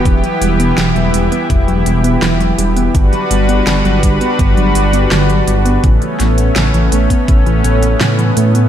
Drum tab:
HH |xxxxxxxxxxxxxxxx|xxxxxxxxxxxxxxxx|xxxxxxxxxxxxxxxx|
SD |----o-------o---|----o-------o---|--o-o-------o---|
BD |o-------o-------|o-----o-o-------|o------oo-------|